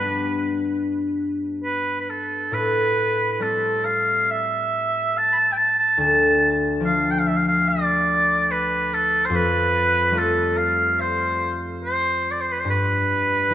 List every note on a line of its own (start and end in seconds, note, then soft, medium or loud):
0.00 2.57 G2 medium
0.00 2.57 G3 soft
0.00 3.05 B3 soft
0.00 2.75 D4 soft
0.00 0.78 B4 loud
1.64 1.99 B4 medium
2.01 2.11 B4 soft
2.10 2.55 A4 medium
2.51 6.04 A2 medium
2.51 3.32 B4 loud
3.32 3.43 B4 medium
3.39 6.04 G3 soft
3.39 6.73 A3 soft
3.39 6.41 C4 soft
3.39 3.87 A4 medium
3.85 4.32 F5 medium
4.31 5.19 E5 medium
5.18 5.34 A5 medium
5.33 5.54 A5 loud
5.33 5.37 B5 medium
5.52 5.59 G5 medium
5.57 5.78 A5 medium
5.79 5.98 A5 loud
5.98 9.36 D2 medium
5.98 6.53 A5 loud
6.80 9.36 F3 soft
6.80 10.12 A3 soft
6.80 9.62 D4 soft
6.86 7.13 F5 medium
7.11 7.21 G5 medium
7.19 7.29 F5 medium
7.27 7.38 E5 medium
7.37 7.45 F5 medium
7.48 7.70 F5 medium
7.68 8.53 D5 loud
8.51 8.95 B4 medium
8.94 9.27 A4 medium
9.25 9.37 C5 medium
9.30 12.72 F2 medium
9.36 10.20 B4 loud
10.11 12.72 G3 soft
10.11 13.45 A3 soft
10.11 12.65 F4 medium
10.18 10.59 A4 medium
10.58 11.02 F5 medium
11.01 11.57 C5 medium
11.85 12.33 C5 medium
12.31 12.43 D5 medium
12.41 12.54 C5 medium
12.52 12.62 B4 medium
12.60 12.68 C5 medium
12.65 13.54 G2 medium
12.70 13.54 B4 loud
13.50 13.54 G3 soft
13.50 13.54 B3 soft
13.50 13.54 E4 soft